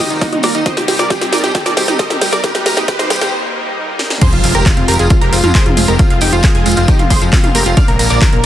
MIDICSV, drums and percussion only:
0, 0, Header, 1, 2, 480
1, 0, Start_track
1, 0, Tempo, 444444
1, 713, Time_signature, 4, 2, 24, 8
1, 9136, End_track
2, 0, Start_track
2, 0, Title_t, "Drums"
2, 112, Note_on_c, 9, 42, 53
2, 113, Note_on_c, 9, 54, 50
2, 220, Note_off_c, 9, 42, 0
2, 221, Note_off_c, 9, 54, 0
2, 232, Note_on_c, 9, 36, 115
2, 232, Note_on_c, 9, 38, 86
2, 232, Note_on_c, 9, 46, 58
2, 233, Note_on_c, 9, 54, 37
2, 340, Note_off_c, 9, 36, 0
2, 340, Note_off_c, 9, 38, 0
2, 340, Note_off_c, 9, 46, 0
2, 341, Note_off_c, 9, 54, 0
2, 351, Note_on_c, 9, 42, 52
2, 351, Note_on_c, 9, 47, 81
2, 459, Note_off_c, 9, 42, 0
2, 459, Note_off_c, 9, 47, 0
2, 463, Note_on_c, 9, 54, 87
2, 471, Note_on_c, 9, 38, 89
2, 471, Note_on_c, 9, 46, 102
2, 571, Note_off_c, 9, 54, 0
2, 579, Note_off_c, 9, 38, 0
2, 579, Note_off_c, 9, 46, 0
2, 591, Note_on_c, 9, 42, 51
2, 591, Note_on_c, 9, 54, 49
2, 699, Note_off_c, 9, 42, 0
2, 699, Note_off_c, 9, 54, 0
2, 711, Note_on_c, 9, 54, 33
2, 712, Note_on_c, 9, 36, 114
2, 712, Note_on_c, 9, 38, 90
2, 712, Note_on_c, 9, 42, 79
2, 712, Note_on_c, 9, 47, 61
2, 819, Note_off_c, 9, 54, 0
2, 820, Note_off_c, 9, 36, 0
2, 820, Note_off_c, 9, 38, 0
2, 820, Note_off_c, 9, 42, 0
2, 820, Note_off_c, 9, 47, 0
2, 832, Note_on_c, 9, 38, 81
2, 832, Note_on_c, 9, 42, 55
2, 940, Note_off_c, 9, 38, 0
2, 940, Note_off_c, 9, 42, 0
2, 951, Note_on_c, 9, 54, 84
2, 952, Note_on_c, 9, 38, 94
2, 952, Note_on_c, 9, 46, 99
2, 1059, Note_off_c, 9, 54, 0
2, 1060, Note_off_c, 9, 38, 0
2, 1060, Note_off_c, 9, 46, 0
2, 1068, Note_on_c, 9, 54, 49
2, 1072, Note_on_c, 9, 38, 79
2, 1176, Note_off_c, 9, 54, 0
2, 1180, Note_off_c, 9, 38, 0
2, 1186, Note_on_c, 9, 54, 40
2, 1192, Note_on_c, 9, 36, 113
2, 1192, Note_on_c, 9, 38, 90
2, 1192, Note_on_c, 9, 42, 77
2, 1294, Note_off_c, 9, 54, 0
2, 1300, Note_off_c, 9, 36, 0
2, 1300, Note_off_c, 9, 38, 0
2, 1300, Note_off_c, 9, 42, 0
2, 1312, Note_on_c, 9, 38, 80
2, 1312, Note_on_c, 9, 42, 53
2, 1420, Note_off_c, 9, 38, 0
2, 1420, Note_off_c, 9, 42, 0
2, 1432, Note_on_c, 9, 38, 91
2, 1432, Note_on_c, 9, 46, 100
2, 1435, Note_on_c, 9, 54, 97
2, 1492, Note_on_c, 9, 42, 65
2, 1540, Note_off_c, 9, 38, 0
2, 1540, Note_off_c, 9, 46, 0
2, 1543, Note_off_c, 9, 54, 0
2, 1552, Note_off_c, 9, 42, 0
2, 1552, Note_on_c, 9, 38, 85
2, 1552, Note_on_c, 9, 42, 54
2, 1555, Note_on_c, 9, 54, 47
2, 1660, Note_off_c, 9, 38, 0
2, 1660, Note_off_c, 9, 42, 0
2, 1663, Note_off_c, 9, 54, 0
2, 1672, Note_on_c, 9, 36, 116
2, 1672, Note_on_c, 9, 38, 92
2, 1672, Note_on_c, 9, 42, 78
2, 1674, Note_on_c, 9, 54, 34
2, 1780, Note_off_c, 9, 36, 0
2, 1780, Note_off_c, 9, 38, 0
2, 1780, Note_off_c, 9, 42, 0
2, 1782, Note_off_c, 9, 54, 0
2, 1792, Note_on_c, 9, 38, 84
2, 1792, Note_on_c, 9, 42, 54
2, 1900, Note_off_c, 9, 38, 0
2, 1900, Note_off_c, 9, 42, 0
2, 1910, Note_on_c, 9, 54, 83
2, 1912, Note_on_c, 9, 38, 97
2, 1912, Note_on_c, 9, 46, 103
2, 2018, Note_off_c, 9, 54, 0
2, 2020, Note_off_c, 9, 38, 0
2, 2020, Note_off_c, 9, 46, 0
2, 2030, Note_on_c, 9, 54, 50
2, 2032, Note_on_c, 9, 38, 83
2, 2032, Note_on_c, 9, 42, 53
2, 2032, Note_on_c, 9, 47, 81
2, 2138, Note_off_c, 9, 54, 0
2, 2140, Note_off_c, 9, 38, 0
2, 2140, Note_off_c, 9, 42, 0
2, 2140, Note_off_c, 9, 47, 0
2, 2152, Note_on_c, 9, 36, 115
2, 2152, Note_on_c, 9, 38, 98
2, 2152, Note_on_c, 9, 42, 81
2, 2260, Note_off_c, 9, 36, 0
2, 2260, Note_off_c, 9, 38, 0
2, 2260, Note_off_c, 9, 42, 0
2, 2272, Note_on_c, 9, 38, 87
2, 2272, Note_on_c, 9, 42, 54
2, 2272, Note_on_c, 9, 47, 77
2, 2380, Note_off_c, 9, 38, 0
2, 2380, Note_off_c, 9, 42, 0
2, 2380, Note_off_c, 9, 47, 0
2, 2392, Note_on_c, 9, 38, 98
2, 2392, Note_on_c, 9, 46, 99
2, 2392, Note_on_c, 9, 54, 85
2, 2500, Note_off_c, 9, 38, 0
2, 2500, Note_off_c, 9, 46, 0
2, 2500, Note_off_c, 9, 54, 0
2, 2510, Note_on_c, 9, 54, 49
2, 2512, Note_on_c, 9, 38, 86
2, 2512, Note_on_c, 9, 42, 53
2, 2618, Note_off_c, 9, 54, 0
2, 2620, Note_off_c, 9, 38, 0
2, 2620, Note_off_c, 9, 42, 0
2, 2631, Note_on_c, 9, 54, 37
2, 2632, Note_on_c, 9, 36, 113
2, 2632, Note_on_c, 9, 38, 99
2, 2632, Note_on_c, 9, 42, 80
2, 2632, Note_on_c, 9, 47, 60
2, 2739, Note_off_c, 9, 54, 0
2, 2740, Note_off_c, 9, 36, 0
2, 2740, Note_off_c, 9, 38, 0
2, 2740, Note_off_c, 9, 42, 0
2, 2740, Note_off_c, 9, 47, 0
2, 2752, Note_on_c, 9, 38, 88
2, 2752, Note_on_c, 9, 42, 56
2, 2860, Note_off_c, 9, 38, 0
2, 2860, Note_off_c, 9, 42, 0
2, 2872, Note_on_c, 9, 38, 103
2, 2872, Note_on_c, 9, 46, 104
2, 2872, Note_on_c, 9, 54, 92
2, 2980, Note_off_c, 9, 38, 0
2, 2980, Note_off_c, 9, 46, 0
2, 2980, Note_off_c, 9, 54, 0
2, 2987, Note_on_c, 9, 54, 54
2, 2992, Note_on_c, 9, 38, 88
2, 2992, Note_on_c, 9, 42, 56
2, 3095, Note_off_c, 9, 54, 0
2, 3100, Note_off_c, 9, 38, 0
2, 3100, Note_off_c, 9, 42, 0
2, 3112, Note_on_c, 9, 36, 117
2, 3112, Note_on_c, 9, 38, 100
2, 3112, Note_on_c, 9, 42, 81
2, 3119, Note_on_c, 9, 54, 39
2, 3220, Note_off_c, 9, 36, 0
2, 3220, Note_off_c, 9, 38, 0
2, 3220, Note_off_c, 9, 42, 0
2, 3227, Note_off_c, 9, 54, 0
2, 3232, Note_on_c, 9, 38, 92
2, 3232, Note_on_c, 9, 42, 56
2, 3340, Note_off_c, 9, 38, 0
2, 3340, Note_off_c, 9, 42, 0
2, 3352, Note_on_c, 9, 38, 102
2, 3352, Note_on_c, 9, 46, 99
2, 3356, Note_on_c, 9, 54, 96
2, 3412, Note_on_c, 9, 42, 67
2, 3460, Note_off_c, 9, 38, 0
2, 3460, Note_off_c, 9, 46, 0
2, 3464, Note_off_c, 9, 54, 0
2, 3472, Note_off_c, 9, 42, 0
2, 3472, Note_on_c, 9, 38, 97
2, 3472, Note_on_c, 9, 42, 56
2, 3473, Note_on_c, 9, 54, 50
2, 3580, Note_off_c, 9, 38, 0
2, 3580, Note_off_c, 9, 42, 0
2, 3581, Note_off_c, 9, 54, 0
2, 4312, Note_on_c, 9, 38, 64
2, 4420, Note_off_c, 9, 38, 0
2, 4432, Note_on_c, 9, 38, 73
2, 4540, Note_off_c, 9, 38, 0
2, 4552, Note_on_c, 9, 42, 83
2, 4552, Note_on_c, 9, 47, 58
2, 4552, Note_on_c, 9, 49, 103
2, 4553, Note_on_c, 9, 36, 118
2, 4559, Note_on_c, 9, 54, 39
2, 4660, Note_off_c, 9, 42, 0
2, 4660, Note_off_c, 9, 47, 0
2, 4660, Note_off_c, 9, 49, 0
2, 4661, Note_off_c, 9, 36, 0
2, 4667, Note_off_c, 9, 54, 0
2, 4672, Note_on_c, 9, 42, 57
2, 4780, Note_off_c, 9, 42, 0
2, 4792, Note_on_c, 9, 46, 106
2, 4794, Note_on_c, 9, 54, 95
2, 4900, Note_off_c, 9, 46, 0
2, 4902, Note_off_c, 9, 54, 0
2, 4912, Note_on_c, 9, 42, 53
2, 4915, Note_on_c, 9, 54, 54
2, 5020, Note_off_c, 9, 42, 0
2, 5023, Note_off_c, 9, 54, 0
2, 5032, Note_on_c, 9, 39, 115
2, 5032, Note_on_c, 9, 42, 77
2, 5033, Note_on_c, 9, 36, 121
2, 5140, Note_off_c, 9, 39, 0
2, 5140, Note_off_c, 9, 42, 0
2, 5141, Note_off_c, 9, 36, 0
2, 5152, Note_on_c, 9, 42, 55
2, 5260, Note_off_c, 9, 42, 0
2, 5272, Note_on_c, 9, 46, 105
2, 5274, Note_on_c, 9, 54, 88
2, 5332, Note_on_c, 9, 42, 66
2, 5380, Note_off_c, 9, 46, 0
2, 5382, Note_off_c, 9, 54, 0
2, 5392, Note_off_c, 9, 42, 0
2, 5392, Note_on_c, 9, 42, 54
2, 5393, Note_on_c, 9, 54, 51
2, 5500, Note_off_c, 9, 42, 0
2, 5501, Note_off_c, 9, 54, 0
2, 5505, Note_on_c, 9, 54, 42
2, 5512, Note_on_c, 9, 42, 79
2, 5513, Note_on_c, 9, 36, 118
2, 5613, Note_off_c, 9, 54, 0
2, 5620, Note_off_c, 9, 42, 0
2, 5621, Note_off_c, 9, 36, 0
2, 5632, Note_on_c, 9, 42, 55
2, 5740, Note_off_c, 9, 42, 0
2, 5752, Note_on_c, 9, 46, 105
2, 5760, Note_on_c, 9, 54, 95
2, 5860, Note_off_c, 9, 46, 0
2, 5868, Note_off_c, 9, 54, 0
2, 5872, Note_on_c, 9, 42, 56
2, 5872, Note_on_c, 9, 47, 75
2, 5874, Note_on_c, 9, 54, 55
2, 5980, Note_off_c, 9, 42, 0
2, 5980, Note_off_c, 9, 47, 0
2, 5982, Note_off_c, 9, 54, 0
2, 5992, Note_on_c, 9, 39, 124
2, 5992, Note_on_c, 9, 42, 82
2, 5993, Note_on_c, 9, 36, 123
2, 6100, Note_off_c, 9, 39, 0
2, 6100, Note_off_c, 9, 42, 0
2, 6101, Note_off_c, 9, 36, 0
2, 6112, Note_on_c, 9, 42, 54
2, 6112, Note_on_c, 9, 47, 75
2, 6220, Note_off_c, 9, 42, 0
2, 6220, Note_off_c, 9, 47, 0
2, 6232, Note_on_c, 9, 46, 105
2, 6235, Note_on_c, 9, 54, 93
2, 6340, Note_off_c, 9, 46, 0
2, 6343, Note_off_c, 9, 54, 0
2, 6350, Note_on_c, 9, 54, 53
2, 6352, Note_on_c, 9, 42, 54
2, 6458, Note_off_c, 9, 54, 0
2, 6460, Note_off_c, 9, 42, 0
2, 6472, Note_on_c, 9, 42, 78
2, 6473, Note_on_c, 9, 36, 126
2, 6477, Note_on_c, 9, 54, 38
2, 6580, Note_off_c, 9, 42, 0
2, 6581, Note_off_c, 9, 36, 0
2, 6585, Note_off_c, 9, 54, 0
2, 6592, Note_on_c, 9, 42, 53
2, 6700, Note_off_c, 9, 42, 0
2, 6705, Note_on_c, 9, 54, 94
2, 6712, Note_on_c, 9, 46, 107
2, 6813, Note_off_c, 9, 54, 0
2, 6820, Note_off_c, 9, 46, 0
2, 6832, Note_on_c, 9, 42, 52
2, 6834, Note_on_c, 9, 54, 50
2, 6940, Note_off_c, 9, 42, 0
2, 6942, Note_off_c, 9, 54, 0
2, 6945, Note_on_c, 9, 54, 37
2, 6952, Note_on_c, 9, 39, 121
2, 6952, Note_on_c, 9, 42, 77
2, 6953, Note_on_c, 9, 36, 127
2, 7053, Note_off_c, 9, 54, 0
2, 7060, Note_off_c, 9, 39, 0
2, 7060, Note_off_c, 9, 42, 0
2, 7061, Note_off_c, 9, 36, 0
2, 7072, Note_on_c, 9, 42, 54
2, 7180, Note_off_c, 9, 42, 0
2, 7189, Note_on_c, 9, 54, 96
2, 7192, Note_on_c, 9, 46, 109
2, 7253, Note_on_c, 9, 42, 65
2, 7297, Note_off_c, 9, 54, 0
2, 7300, Note_off_c, 9, 46, 0
2, 7305, Note_on_c, 9, 54, 51
2, 7312, Note_off_c, 9, 42, 0
2, 7312, Note_on_c, 9, 42, 56
2, 7413, Note_off_c, 9, 54, 0
2, 7420, Note_off_c, 9, 42, 0
2, 7432, Note_on_c, 9, 42, 77
2, 7433, Note_on_c, 9, 36, 124
2, 7433, Note_on_c, 9, 54, 39
2, 7540, Note_off_c, 9, 42, 0
2, 7541, Note_off_c, 9, 36, 0
2, 7541, Note_off_c, 9, 54, 0
2, 7553, Note_on_c, 9, 42, 53
2, 7553, Note_on_c, 9, 47, 59
2, 7661, Note_off_c, 9, 42, 0
2, 7661, Note_off_c, 9, 47, 0
2, 7672, Note_on_c, 9, 46, 113
2, 7673, Note_on_c, 9, 36, 64
2, 7675, Note_on_c, 9, 54, 84
2, 7780, Note_off_c, 9, 46, 0
2, 7781, Note_off_c, 9, 36, 0
2, 7783, Note_off_c, 9, 54, 0
2, 7792, Note_on_c, 9, 42, 53
2, 7794, Note_on_c, 9, 54, 54
2, 7900, Note_off_c, 9, 42, 0
2, 7902, Note_off_c, 9, 54, 0
2, 7913, Note_on_c, 9, 36, 126
2, 7913, Note_on_c, 9, 39, 120
2, 7913, Note_on_c, 9, 46, 61
2, 7917, Note_on_c, 9, 54, 44
2, 8021, Note_off_c, 9, 36, 0
2, 8021, Note_off_c, 9, 39, 0
2, 8021, Note_off_c, 9, 46, 0
2, 8025, Note_off_c, 9, 54, 0
2, 8032, Note_on_c, 9, 42, 53
2, 8032, Note_on_c, 9, 47, 75
2, 8140, Note_off_c, 9, 42, 0
2, 8140, Note_off_c, 9, 47, 0
2, 8152, Note_on_c, 9, 46, 110
2, 8162, Note_on_c, 9, 54, 100
2, 8260, Note_off_c, 9, 46, 0
2, 8270, Note_off_c, 9, 54, 0
2, 8270, Note_on_c, 9, 54, 53
2, 8272, Note_on_c, 9, 42, 52
2, 8378, Note_off_c, 9, 54, 0
2, 8380, Note_off_c, 9, 42, 0
2, 8391, Note_on_c, 9, 54, 45
2, 8392, Note_on_c, 9, 42, 77
2, 8392, Note_on_c, 9, 47, 61
2, 8393, Note_on_c, 9, 36, 123
2, 8499, Note_off_c, 9, 54, 0
2, 8500, Note_off_c, 9, 42, 0
2, 8500, Note_off_c, 9, 47, 0
2, 8501, Note_off_c, 9, 36, 0
2, 8512, Note_on_c, 9, 42, 53
2, 8620, Note_off_c, 9, 42, 0
2, 8632, Note_on_c, 9, 46, 112
2, 8632, Note_on_c, 9, 54, 100
2, 8740, Note_off_c, 9, 46, 0
2, 8740, Note_off_c, 9, 54, 0
2, 8752, Note_on_c, 9, 42, 50
2, 8752, Note_on_c, 9, 54, 62
2, 8860, Note_off_c, 9, 42, 0
2, 8860, Note_off_c, 9, 54, 0
2, 8872, Note_on_c, 9, 39, 118
2, 8872, Note_on_c, 9, 42, 74
2, 8873, Note_on_c, 9, 36, 127
2, 8980, Note_off_c, 9, 39, 0
2, 8980, Note_off_c, 9, 42, 0
2, 8981, Note_off_c, 9, 36, 0
2, 8992, Note_on_c, 9, 42, 51
2, 9100, Note_off_c, 9, 42, 0
2, 9136, End_track
0, 0, End_of_file